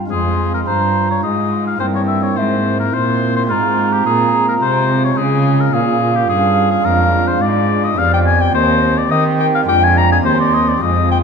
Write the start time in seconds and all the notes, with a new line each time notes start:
0.06 G#3 C4 F4
0.11 F2 G#4 C6
0.54 A#4
0.67 G2 C5 A#5
1.11 C#5
1.23 G#2 D#5 G#5
1.67 F5
1.76 A#3 C4 E4 C5
1.81 G2 G5
1.95 C#5
2.08 E5
2.23 C#5
2.36 G#2 C5 E5
2.80 A#4
2.94 A#2 C5 C6
3.36 C5
3.46 G#3 C4 F4
3.50 G#2 A#5
3.92 G4
4.06 A#2 G#4
4.48 A#4
4.62 C3 C5
5.05 C#5
5.13 G#3 C#4 F4
5.17 C#3 G#4 G#5
5.60 A#4
5.73 A#2 G#4 F5
6.16 G4
6.29 G2 G#4
6.71 G#4
6.81 F2 G#3 D4 F4 A#4
6.86 F2
7.28 C5
7.41 G#2 D5
7.84 D#5
7.94 F2 B3 G4 F5
7.98 D5
8.14 G5
8.26 G#5
8.41 G5
8.51 D#2 C4 G4 C5 D#5
8.98 D5
9.11 D#3 D#5 G5
9.40 G5
9.55 F5
9.63 G#3 D4 F4
9.67 F2 G5
9.84 G#5
9.98 A#5
10.12 G#5
10.22 D#2 C4 G4 C5 C6
10.40 D5
10.54 D#5
10.68 D5
10.78 F2 G#3 C4 F4 D#5
10.82 F2 G#5
11.12 G5